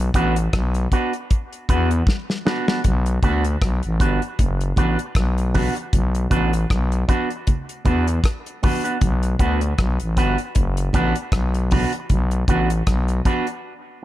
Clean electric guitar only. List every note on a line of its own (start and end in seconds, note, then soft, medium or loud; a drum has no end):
0.15 0.34 B3 medium
0.15 0.34 D4 medium
0.15 0.34 F#4 medium
0.15 0.35 B4 medium
0.92 1.11 B3 medium
0.92 1.11 D4 medium
0.92 1.12 F#4 medium
0.92 1.12 B4 medium
1.69 1.88 B3 medium
1.69 1.89 D4 medium
1.69 1.89 F#4 medium
1.69 1.89 B4 medium
2.45 2.65 B3 medium
2.45 2.65 D4 medium
2.45 2.66 F#4 medium
2.45 2.66 B4 medium
2.68 2.80 B3 soft
2.68 2.80 D4 soft
2.68 2.80 F#4 medium
2.68 2.80 B4 medium
3.23 3.42 B3 medium
3.23 3.43 D4 medium
3.23 3.43 F#4 medium
3.23 3.43 B4 medium
4.00 4.20 B3 medium
4.00 4.20 D4 medium
4.00 4.20 F#4 medium
4.00 4.20 B4 medium
4.77 4.97 B3 medium
4.77 4.97 D4 medium
4.77 4.97 F#4 medium
4.77 4.97 B4 medium
5.54 5.74 B3 medium
5.54 5.74 D4 medium
5.54 5.74 F#4 medium
5.54 5.74 B4 medium
5.75 muted clean electric guitar stroke soft
6.30 6.50 B3 medium
6.30 6.51 D4 medium
6.30 6.51 F#4 medium
6.30 6.51 B4 medium
7.08 7.28 B3 medium
7.08 7.28 D4 medium
7.08 7.28 F#4 medium
7.08 7.28 B4 medium
7.85 8.05 B3 medium
7.85 8.05 D4 medium
7.85 8.05 F#4 medium
7.85 8.05 B4 medium
8.63 8.82 B3 medium
8.63 8.83 D4 medium
8.63 8.83 F#4 medium
8.63 8.83 B4 medium
8.84 8.97 B3 soft
8.84 8.97 D4 medium
8.84 8.96 F#4 medium
8.84 8.96 B4 medium
9.39 9.59 B3 medium
9.39 9.60 D4 medium
9.39 9.60 F#4 medium
9.39 9.60 B4 medium
10.17 10.37 B3 medium
10.17 10.37 D4 medium
10.17 10.37 F#4 medium
10.17 10.37 B4 loud
10.94 11.14 B3 medium
10.94 11.14 D4 loud
10.94 11.14 F#4 medium
10.94 11.14 B4 medium
11.71 11.91 B3 medium
11.71 11.91 D4 medium
11.71 11.91 F#4 medium
11.71 11.91 B4 medium
11.94 muted clean electric guitar stroke soft
12.48 12.68 B3 medium
12.48 12.68 D4 medium
12.48 12.68 F#4 medium
12.48 12.69 B4 medium
13.25 13.45 B3 medium
13.25 13.45 D4 medium
13.25 13.45 F#4 medium
13.25 13.46 B4 medium